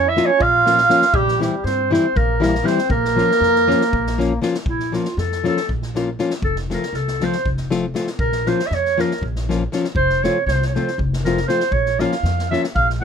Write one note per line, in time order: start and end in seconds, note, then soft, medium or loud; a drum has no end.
0.00 0.20 F2 medium
0.00 0.10 C#5 loud
0.05 0.23 E4 medium
0.05 0.27 E5 medium
0.16 0.30 F3 medium
0.16 0.30 A#3 medium
0.16 0.30 C#4 medium
0.16 0.31 F4 medium
0.16 snare soft
0.25 0.41 C#4 medium
0.25 0.44 C#5 loud
0.38 0.84 A#1 medium
0.38 1.13 F4 medium
0.38 1.17 F5 loud
0.38 kick medium
0.66 0.79 F3 medium
0.66 0.79 A#3 medium
0.66 0.80 C#4 medium
0.66 0.80 F4 medium
0.66 snare soft
0.78 snare soft
0.89 1.03 F3 medium
0.89 1.03 A#3 medium
0.89 1.03 C#4 medium
0.89 1.04 F4 medium
0.89 snare soft
1.02 snare soft
1.13 1.45 A#1 medium
1.13 1.39 G3 medium
1.13 1.42 G4 loud
1.13 kick loud
1.28 snare soft
1.40 1.54 E3 medium
1.40 1.54 G3 medium
1.40 1.63 G3 medium
1.40 1.54 C4 medium
1.40 1.55 E4 medium
1.40 1.66 G4 medium
1.40 snare soft
1.64 1.95 G2 medium
1.64 1.90 C4 medium
1.64 1.92 C5 medium
1.64 snare soft
1.91 2.05 E3 medium
1.91 2.05 G3 medium
1.91 2.15 C4 medium
1.91 2.05 C4 medium
1.91 2.06 E4 medium
1.91 2.18 C5 medium
1.91 snare soft
2.16 2.60 A#1 medium
2.16 2.41 A#3 medium
2.16 2.43 A#4 loud
2.16 kick loud
2.40 2.55 E3 medium
2.40 2.55 G3 medium
2.40 2.65 A#3 medium
2.40 2.55 C4 soft
2.40 2.55 E4 medium
2.40 2.67 A#4 medium
2.40 snare soft
2.55 snare soft
2.64 2.78 E3 medium
2.64 2.79 G3 medium
2.64 2.79 C4 medium
2.64 2.91 C4 medium
2.64 2.79 E4 medium
2.64 2.90 C5 medium
2.64 snare soft
2.78 snare soft
2.89 3.21 A#1 medium
2.89 4.39 A#3 loud
2.89 4.39 A#4 loud
2.89 kick loud
3.05 snare soft
3.16 3.30 F3 medium
3.16 3.30 A#3 medium
3.16 3.31 C#4 medium
3.16 3.31 F4 medium
3.16 snare soft
3.31 snare soft
3.41 3.72 F2 medium
3.41 snare soft
3.56 snare soft
3.68 3.82 F3 medium
3.68 3.82 A#3 medium
3.68 3.82 C#4 medium
3.68 3.83 F4 medium
3.68 snare soft
3.81 snare soft
3.93 4.37 A#1 medium
3.93 kick medium
4.07 snare soft
4.18 4.32 F3 medium
4.18 4.32 A#3 medium
4.18 4.32 C#4 medium
4.18 4.33 F4 medium
4.18 snare soft
4.42 4.55 F3 medium
4.42 4.56 A#3 medium
4.42 4.56 C#4 medium
4.42 4.56 F4 medium
4.42 snare soft
4.54 snare soft
4.66 4.97 A#1 medium
4.66 4.97 E4 medium
4.66 kick medium
4.80 snare soft
4.92 5.06 F3 medium
4.92 5.07 A#3 medium
4.92 5.07 C#4 soft
4.92 5.08 F4 medium
4.92 5.20 F4 medium
4.92 snare soft
5.05 snare soft
5.17 5.48 F2 medium
5.17 5.46 A4 medium
5.17 snare soft
5.32 snare soft
5.44 5.58 F3 medium
5.44 5.58 A#3 medium
5.44 5.59 C#4 medium
5.44 5.59 F4 medium
5.44 5.69 A4 medium
5.44 snare soft
5.57 snare soft
5.69 6.14 A#1 medium
5.69 kick medium
5.82 snare soft
5.95 6.08 F3 medium
5.95 6.09 A#3 medium
5.95 6.09 C#4 medium
5.95 6.09 F4 medium
5.95 snare soft
6.19 6.32 F3 medium
6.19 6.32 A#3 soft
6.19 6.33 C#4 medium
6.19 6.33 F4 medium
6.19 snare soft
6.30 snare soft
6.42 6.73 F1 medium
6.42 6.56 A4 medium
6.42 kick medium
6.56 snare soft
6.70 6.84 F3 medium
6.70 6.84 A3 medium
6.70 6.84 C4 medium
6.70 6.85 F4 medium
6.70 6.97 A#4 medium
6.70 snare soft
6.83 snare soft
6.93 7.24 C2 medium
6.93 7.26 A4 medium
6.93 snare soft
7.08 snare soft
7.20 7.35 F3 medium
7.20 7.35 A3 medium
7.20 7.36 C4 soft
7.20 7.36 F4 medium
7.20 7.47 C5 loud
7.20 snare soft
7.32 snare soft
7.45 7.90 F1 medium
7.45 kick medium
7.57 snare soft
7.71 7.84 F3 medium
7.71 7.85 A3 medium
7.71 7.85 C4 medium
7.71 7.85 F4 medium
7.71 snare soft
7.94 8.08 F3 medium
7.94 8.09 A3 medium
7.94 8.09 C4 medium
7.94 8.09 F4 medium
7.94 snare soft
8.07 snare soft
8.19 8.50 A#1 medium
8.19 8.49 A#4 medium
8.19 kick medium
8.32 snare soft
8.46 8.60 F3 medium
8.46 8.60 A#3 medium
8.46 8.61 C#4 medium
8.46 8.61 F4 medium
8.46 8.68 C5 medium
8.46 snare soft
8.60 snare soft
8.66 8.75 E5 medium
8.71 9.02 F2 medium
8.71 9.02 C#5 medium
8.71 snare soft
8.85 snare soft
8.98 9.12 F3 medium
8.98 9.12 A#3 medium
8.98 9.12 C#4 medium
8.98 9.12 F4 medium
8.98 9.24 A#4 medium
8.98 snare soft
9.11 snare soft
9.21 9.66 A#1 medium
9.21 kick medium
9.36 snare soft
9.49 9.62 F3 medium
9.49 9.62 A#3 medium
9.49 9.63 C#4 medium
9.49 9.63 F4 medium
9.49 snare soft
9.72 9.85 F3 medium
9.72 9.86 A#3 medium
9.72 9.86 C#4 medium
9.72 9.86 F4 medium
9.72 snare soft
9.84 snare soft
9.95 10.26 F1 medium
9.95 10.24 C5 loud
9.95 kick medium
10.09 snare soft
10.23 10.37 F3 medium
10.23 10.37 A3 medium
10.23 10.38 C4 medium
10.23 10.38 F4 medium
10.23 10.46 C#5 medium
10.23 snare soft
10.46 10.78 C2 medium
10.46 10.66 C5 medium
10.46 snare soft
10.62 snare soft
10.66 10.75 C#5 medium
10.74 10.89 F3 medium
10.74 10.89 A3 medium
10.74 10.89 C4 medium
10.74 10.99 C5 medium
10.74 snare soft
10.78 10.90 F4 medium
10.88 snare soft
10.98 11.42 F1 medium
10.98 kick medium
11.13 snare soft
11.25 11.38 F3 medium
11.25 11.39 A3 medium
11.25 11.39 C4 medium
11.25 11.39 F4 medium
11.25 11.47 A#4 medium
11.25 snare soft
11.37 snare soft
11.48 11.62 F3 medium
11.48 11.62 A3 soft
11.48 11.62 C4 soft
11.48 11.62 F4 medium
11.48 11.74 C5 medium
11.48 snare soft
11.60 snare soft
11.71 12.03 A#1 medium
11.71 12.01 C#5 medium
11.71 kick medium
11.86 snare soft
11.99 12.13 F3 medium
11.99 12.13 A#3 medium
11.99 12.14 C#4 medium
11.99 12.14 F4 medium
11.99 12.50 F5 medium
11.99 snare soft
12.12 snare soft
12.23 12.54 F2 medium
12.23 snare soft
12.39 snare soft
12.51 12.65 F3 medium
12.51 12.65 A#3 medium
12.51 12.65 C#4 medium
12.51 12.66 F4 medium
12.51 12.62 E5 medium
12.51 snare soft
12.64 snare soft
12.75 13.04 A#1 medium
12.75 12.87 F5 loud
12.75 kick medium
12.90 snare soft